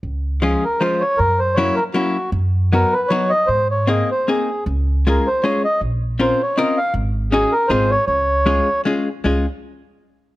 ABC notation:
X:1
M:3/4
L:1/8
Q:"Swing" 1/4=157
K:Db
V:1 name="Accordion"
z2 A B c d | B c d B G2 | z2 B _c d e | c d e c A2 |
z2 B c d e | z2 c d e f | z2 A B c d | d4 z2 |
z6 |]
V:2 name="Hollow-body jazz guitar"
z2 [F,A,DF] z [F,A,DF] z | z2 [G,B,D_F] z [G,B,DF] z | z2 [G,_CEG] z [G,CEG] z | z2 [B,CEA] z [B,CEA] z |
z2 [A,DFA] z [A,DFA] z | z2 [CDFB] z [CDFB] z | z2 [DEGA] z [CEFA] z | z2 [A,DFA] z [A,DFA] z |
[A,DFA] z4 z |]
V:3 name="Upright bass" clef=bass
D,,4 z2 | G,,4 z2 | G,,4 z2 | A,,4 z2 |
D,,4 z2 | B,,,4 z2 | A,,,4 A,,,2 | D,,4 z2 |
D,, z4 z |]